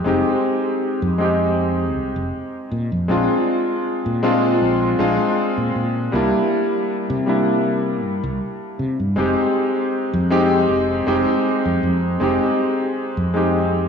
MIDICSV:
0, 0, Header, 1, 3, 480
1, 0, Start_track
1, 0, Tempo, 759494
1, 36, Time_signature, 4, 2, 24, 8
1, 8775, End_track
2, 0, Start_track
2, 0, Title_t, "Electric grand piano"
2, 0, Program_c, 0, 2
2, 0, Control_c, 0, 64, 127
2, 0, Note_on_c, 0, 56, 83
2, 0, Note_on_c, 0, 60, 74
2, 0, Note_on_c, 0, 63, 76
2, 0, Note_on_c, 0, 67, 92
2, 27, Note_off_c, 0, 56, 0
2, 27, Note_on_c, 0, 56, 74
2, 34, Note_off_c, 0, 60, 0
2, 34, Note_on_c, 0, 60, 69
2, 39, Note_off_c, 0, 63, 0
2, 39, Note_on_c, 0, 63, 70
2, 46, Note_off_c, 0, 67, 0
2, 46, Note_on_c, 0, 67, 84
2, 725, Note_off_c, 0, 56, 0
2, 728, Note_off_c, 0, 60, 0
2, 731, Note_off_c, 0, 63, 0
2, 734, Note_off_c, 0, 67, 0
2, 747, Note_on_c, 0, 56, 73
2, 753, Note_on_c, 0, 60, 66
2, 759, Note_on_c, 0, 63, 68
2, 766, Note_on_c, 0, 67, 80
2, 1698, Note_off_c, 0, 56, 0
2, 1701, Note_off_c, 0, 60, 0
2, 1704, Note_off_c, 0, 63, 0
2, 1708, Note_off_c, 0, 67, 0
2, 1724, Control_c, 0, 64, 0
2, 1818, Control_c, 0, 64, 127
2, 1947, Note_on_c, 0, 56, 79
2, 1954, Note_on_c, 0, 60, 70
2, 1960, Note_on_c, 0, 62, 68
2, 1966, Note_on_c, 0, 65, 85
2, 2645, Note_off_c, 0, 56, 0
2, 2648, Note_off_c, 0, 60, 0
2, 2651, Note_off_c, 0, 62, 0
2, 2655, Note_off_c, 0, 65, 0
2, 2671, Note_on_c, 0, 56, 92
2, 2675, Note_on_c, 0, 60, 86
2, 2678, Note_on_c, 0, 62, 84
2, 2681, Note_on_c, 0, 65, 101
2, 2824, Note_off_c, 0, 56, 0
2, 2825, Note_off_c, 0, 60, 0
2, 2827, Note_off_c, 0, 62, 0
2, 2829, Note_off_c, 0, 65, 0
2, 3153, Note_on_c, 0, 56, 86
2, 3156, Note_on_c, 0, 60, 79
2, 3159, Note_on_c, 0, 62, 75
2, 3162, Note_on_c, 0, 65, 99
2, 3250, Note_off_c, 0, 56, 0
2, 3252, Note_off_c, 0, 60, 0
2, 3253, Note_off_c, 0, 62, 0
2, 3255, Note_off_c, 0, 65, 0
2, 3869, Note_on_c, 0, 55, 77
2, 3876, Note_on_c, 0, 58, 71
2, 3882, Note_on_c, 0, 62, 71
2, 3883, Control_c, 0, 64, 0
2, 3888, Note_on_c, 0, 64, 89
2, 3989, Control_c, 0, 64, 127
2, 4566, Note_off_c, 0, 55, 0
2, 4569, Note_off_c, 0, 58, 0
2, 4572, Note_off_c, 0, 62, 0
2, 4575, Note_off_c, 0, 64, 0
2, 4589, Note_on_c, 0, 55, 71
2, 4596, Note_on_c, 0, 58, 65
2, 4602, Note_on_c, 0, 62, 64
2, 4608, Note_on_c, 0, 64, 78
2, 5766, Note_off_c, 0, 55, 0
2, 5769, Note_off_c, 0, 58, 0
2, 5772, Note_off_c, 0, 62, 0
2, 5776, Note_off_c, 0, 64, 0
2, 5788, Note_on_c, 0, 56, 80
2, 5795, Note_on_c, 0, 60, 72
2, 5801, Note_on_c, 0, 63, 71
2, 5804, Control_c, 0, 64, 0
2, 5808, Note_on_c, 0, 67, 88
2, 5911, Control_c, 0, 64, 127
2, 6486, Note_off_c, 0, 56, 0
2, 6489, Note_off_c, 0, 60, 0
2, 6492, Note_off_c, 0, 63, 0
2, 6495, Note_off_c, 0, 67, 0
2, 6512, Note_on_c, 0, 56, 90
2, 6515, Note_on_c, 0, 60, 84
2, 6518, Note_on_c, 0, 63, 87
2, 6521, Note_on_c, 0, 67, 102
2, 6664, Note_off_c, 0, 56, 0
2, 6665, Note_off_c, 0, 60, 0
2, 6667, Note_off_c, 0, 63, 0
2, 6668, Note_off_c, 0, 67, 0
2, 6994, Note_on_c, 0, 56, 88
2, 6997, Note_on_c, 0, 60, 80
2, 7000, Note_on_c, 0, 63, 78
2, 7003, Note_on_c, 0, 67, 93
2, 7091, Note_off_c, 0, 56, 0
2, 7092, Note_off_c, 0, 60, 0
2, 7094, Note_off_c, 0, 63, 0
2, 7095, Note_off_c, 0, 67, 0
2, 7710, Note_on_c, 0, 56, 80
2, 7716, Note_on_c, 0, 60, 72
2, 7722, Note_on_c, 0, 63, 72
2, 7729, Note_on_c, 0, 67, 85
2, 8406, Note_off_c, 0, 56, 0
2, 8410, Note_off_c, 0, 60, 0
2, 8412, Note_off_c, 0, 63, 0
2, 8416, Note_off_c, 0, 67, 0
2, 8429, Note_on_c, 0, 56, 74
2, 8435, Note_on_c, 0, 60, 68
2, 8441, Note_on_c, 0, 63, 65
2, 8448, Note_on_c, 0, 67, 80
2, 8775, Note_off_c, 0, 56, 0
2, 8775, Note_off_c, 0, 60, 0
2, 8775, Note_off_c, 0, 63, 0
2, 8775, Note_off_c, 0, 67, 0
2, 8775, End_track
3, 0, Start_track
3, 0, Title_t, "Fretless electric bass"
3, 0, Program_c, 1, 35
3, 35, Note_on_c, 1, 29, 95
3, 145, Note_off_c, 1, 29, 0
3, 646, Note_on_c, 1, 41, 103
3, 1235, Note_off_c, 1, 41, 0
3, 1235, Note_on_c, 1, 36, 76
3, 1345, Note_off_c, 1, 36, 0
3, 1365, Note_on_c, 1, 29, 96
3, 1459, Note_off_c, 1, 29, 0
3, 1716, Note_on_c, 1, 46, 89
3, 1826, Note_off_c, 1, 46, 0
3, 1844, Note_on_c, 1, 41, 75
3, 1939, Note_off_c, 1, 41, 0
3, 1955, Note_on_c, 1, 34, 90
3, 2065, Note_off_c, 1, 34, 0
3, 2565, Note_on_c, 1, 46, 102
3, 2889, Note_off_c, 1, 46, 0
3, 2916, Note_on_c, 1, 34, 79
3, 3123, Note_off_c, 1, 34, 0
3, 3157, Note_on_c, 1, 34, 79
3, 3266, Note_off_c, 1, 34, 0
3, 3524, Note_on_c, 1, 46, 83
3, 3619, Note_off_c, 1, 46, 0
3, 3636, Note_on_c, 1, 46, 81
3, 3843, Note_off_c, 1, 46, 0
3, 3876, Note_on_c, 1, 36, 91
3, 3986, Note_off_c, 1, 36, 0
3, 4486, Note_on_c, 1, 48, 106
3, 5076, Note_off_c, 1, 48, 0
3, 5076, Note_on_c, 1, 43, 81
3, 5186, Note_off_c, 1, 43, 0
3, 5205, Note_on_c, 1, 36, 96
3, 5299, Note_off_c, 1, 36, 0
3, 5557, Note_on_c, 1, 48, 83
3, 5666, Note_off_c, 1, 48, 0
3, 5685, Note_on_c, 1, 43, 74
3, 5779, Note_off_c, 1, 43, 0
3, 5796, Note_on_c, 1, 29, 92
3, 5906, Note_off_c, 1, 29, 0
3, 6405, Note_on_c, 1, 41, 105
3, 6729, Note_off_c, 1, 41, 0
3, 6757, Note_on_c, 1, 29, 76
3, 6963, Note_off_c, 1, 29, 0
3, 6997, Note_on_c, 1, 29, 76
3, 7106, Note_off_c, 1, 29, 0
3, 7366, Note_on_c, 1, 41, 86
3, 7460, Note_off_c, 1, 41, 0
3, 7477, Note_on_c, 1, 41, 85
3, 7683, Note_off_c, 1, 41, 0
3, 7717, Note_on_c, 1, 29, 90
3, 7826, Note_off_c, 1, 29, 0
3, 8325, Note_on_c, 1, 41, 100
3, 8775, Note_off_c, 1, 41, 0
3, 8775, End_track
0, 0, End_of_file